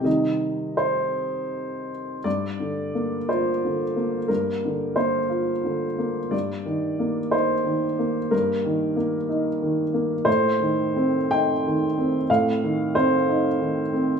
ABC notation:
X:1
M:6/8
L:1/8
Q:3/8=60
K:Cm
V:1 name="Upright piano"
[Ee]2 c4 | [K:Gm] d3 c3 | B2 c4 | d3 c3 |
B2 z4 | c3 g3 | f2 c4 |]
V:2 name="Upright piano" clef=bass
[C,E,G,]6 | [K:Gm] G,, D, B, F D, B, | G,, D, B, F D, B, | G,, E, B, E E, B, |
G,, E, B, E E, B, | A,, E, C E E, C | A,, E, C E E, C |]